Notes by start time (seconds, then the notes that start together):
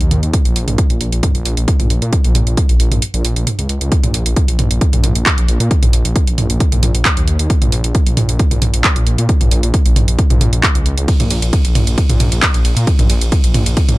0.01 D#2, closed hi-hat
0.11 D#2, mid tom, open hi-hat
0.23 D#2, closed hi-hat
0.34 kick, closed hi-hat
0.45 A#1, closed hi-hat
0.56 A#1, open hi-hat
0.68 A#1, closed hi-hat, mid tom
0.78 kick, closed hi-hat
0.90 A#1, closed hi-hat
1.01 A#1, open hi-hat
1.12 A#1, closed hi-hat
1.23 kick, closed hi-hat, mid tom
1.35 A#1, closed hi-hat
1.45 A#1, open hi-hat
1.57 A#1, closed hi-hat
1.68 kick, closed hi-hat
1.80 A#1, closed hi-hat, mid tom
1.90 A#1, open hi-hat
2.02 A#2, closed hi-hat
2.13 kick, closed hi-hat
2.24 A#1, closed hi-hat
2.35 A#1, mid tom, open hi-hat
2.47 A#1, closed hi-hat
2.57 kick, closed hi-hat
2.69 A#1, closed hi-hat
2.80 A#1, open hi-hat
2.92 A#1, closed hi-hat, mid tom
3.02 closed hi-hat
3.14 A#1, closed hi-hat
3.25 A#1, open hi-hat
3.36 A#1, closed hi-hat
3.47 closed hi-hat, mid tom
3.59 C#2, closed hi-hat
3.69 C#2, open hi-hat
3.81 C#2, closed hi-hat
3.92 kick, closed hi-hat
4.04 A#1, closed hi-hat, mid tom
4.14 A#1, open hi-hat
4.26 A#1, closed hi-hat
4.36 kick, closed hi-hat
4.48 A#1, closed hi-hat
4.59 A#1, mid tom, open hi-hat
4.71 A#1, closed hi-hat
4.81 kick, closed hi-hat
4.93 A#1, closed hi-hat, mid tom
5.04 A#1, mid tom, open hi-hat
5.15 A#1, closed hi-hat
5.26 kick, clap, closed hi-hat
5.38 A#1, closed hi-hat
5.48 A#1, open hi-hat
5.60 A#2, closed hi-hat
5.71 kick, closed hi-hat
5.83 A#1, closed hi-hat, mid tom
5.93 A#1, open hi-hat
6.05 A#1, closed hi-hat
6.16 kick, closed hi-hat
6.27 A#1, closed hi-hat
6.38 A#1, mid tom, open hi-hat
6.50 A#1, closed hi-hat
6.60 kick, closed hi-hat
6.72 A#1, closed hi-hat, mid tom
6.83 A#1, mid tom, open hi-hat
6.95 A#1, closed hi-hat
7.05 kick, clap, closed hi-hat
7.17 D#2, closed hi-hat
7.28 D#2, open hi-hat
7.39 D#2, closed hi-hat
7.50 kick, closed hi-hat
7.62 A#1, closed hi-hat, mid tom
7.72 A#1, open hi-hat
7.84 A#1, closed hi-hat
7.95 kick, closed hi-hat
8.06 A#1, closed hi-hat
8.17 A#1, mid tom, open hi-hat
8.29 A#1, closed hi-hat
8.39 kick, closed hi-hat
8.51 A#1, closed hi-hat, mid tom
8.62 A#1, mid tom, open hi-hat
8.74 A#1, closed hi-hat
8.84 kick, clap, closed hi-hat
8.96 A#1, closed hi-hat
9.07 A#1, open hi-hat
9.18 A#2, closed hi-hat
9.29 kick, closed hi-hat
9.41 A#1, closed hi-hat, mid tom
9.51 A#1, open hi-hat
9.63 A#1, closed hi-hat
9.74 kick, closed hi-hat
9.86 A#1, closed hi-hat
9.96 A#1, mid tom, open hi-hat
10.08 A#1, closed hi-hat
10.19 kick, closed hi-hat
10.30 A#1, closed hi-hat, mid tom
10.41 A#1, mid tom, open hi-hat
10.53 A#1, closed hi-hat
10.63 kick, clap, closed hi-hat
10.75 C#2, closed hi-hat
10.86 C#2, open hi-hat
10.98 C#2, closed hi-hat
11.08 kick, closed hi-hat, ride
11.20 A#1, closed hi-hat, mid tom, ride
11.31 A#1, open hi-hat, ride
11.42 A#1, closed hi-hat, ride
11.53 kick, closed hi-hat, ride
11.65 A#1, closed hi-hat, ride
11.75 A#1, mid tom, open hi-hat, ride
11.87 A#1, closed hi-hat, ride
11.98 kick, closed hi-hat, ride
12.09 A#1, closed hi-hat, mid tom, ride
12.20 A#1, mid tom, open hi-hat, ride
12.32 A#1, closed hi-hat, ride
12.42 kick, clap, closed hi-hat, ride
12.54 A#1, closed hi-hat, ride
12.65 A#1, open hi-hat, ride
12.77 A#2, closed hi-hat, ride
12.87 kick, closed hi-hat, ride
12.99 A#1, closed hi-hat, mid tom, ride
13.10 A#1, open hi-hat, ride
13.21 A#1, closed hi-hat, ride
13.32 kick, closed hi-hat, ride
13.44 A#1, closed hi-hat, ride
13.54 A#1, mid tom, open hi-hat, ride
13.66 A#1, closed hi-hat, ride
13.77 kick, closed hi-hat, ride
13.89 A#1, closed hi-hat, mid tom, ride